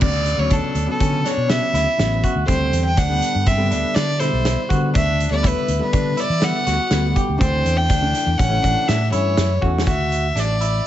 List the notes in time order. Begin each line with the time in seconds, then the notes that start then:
0.01 D2 C#3 D5, kick, crash
0.26 closed hi-hat
0.37 D2 C#3 F#3 B3 C#5
0.50 D4 A4, kick, closed hi-hat
0.75 D2, closed hi-hat
0.86 C#3 F#3 B3
0.91 A4
1.00 D3 C#4, kick, closed hi-hat
1.24 D4 C#5, snare, closed hi-hat
1.37 B2
1.47 C#3 F#3 B3 E5, snare, closed hi-hat
1.73 D2 E4, snare, closed hi-hat
1.97 A1 C#3 F#3 B3, snare, closed hi-hat
2.24 F#4, kick, closed hi-hat
2.35 D2
2.46 D2 D3 G3 C4 C5, kick, closed hi-hat
2.72 E2, closed hi-hat
2.85 G5
2.97 D2 D4 F#5, kick, snare, closed hi-hat
3.08 D3 G3 B3
3.22 closed hi-hat
3.35 G2
3.46 C4 E5, kick, closed hi-hat
3.57 D3 G3 B3
3.71 D2 D4, closed hi-hat
3.94 D3 D5, snare, closed hi-hat
4.20 B2 D3 G3 E4 C5, snare, closed hi-hat
4.33 B1
4.45 snare, closed hi-hat
4.69 D3 G3 B3 F#4, kick, closed hi-hat
4.94 D2 D4 E5, kick, closed hi-hat
5.20 closed hi-hat
5.31 D2 D3 G3 B3 D5
5.43 E4, kick, closed hi-hat
5.48 B4
5.68 D2, closed hi-hat
5.79 D3 G3 B3 B4
5.93 D3 D4, kick, closed hi-hat
6.17 E4 D5, closed hi-hat
6.29 E3
6.40 D3 G3 B3 F#5, snare, closed hi-hat
6.67 D2 F#4, snare, closed hi-hat
6.90 D2 D3 G3 B3, snare, closed hi-hat
7.16 G4, kick, closed hi-hat
7.29 D2
7.37 D2 E3 A3 C4 D4 C5
7.41 kick, closed hi-hat
7.65 E2, closed hi-hat
7.76 G5
7.89 D2 D4, kick, closed hi-hat
8.01 E3 A3 D4
8.15 closed hi-hat
8.26 E2
8.37 A1 C#4 F#5, kick, closed hi-hat
8.49 E3 A3 C#4
8.62 A1 D4, kick, closed hi-hat
8.88 A2 E5, snare, closed hi-hat
9.10 G2 E3 A3 C#4 E4 C#5, closed hi-hat
9.37 F#2, snare, closed hi-hat
9.61 E2 E3 A3 C#4 F#4, kick
9.78 snare
9.86 D2 F#4 E5, kick, closed hi-hat
10.12 closed hi-hat
10.35 A1 D4, snare, closed hi-hat
10.39 D5
10.61 E4, closed hi-hat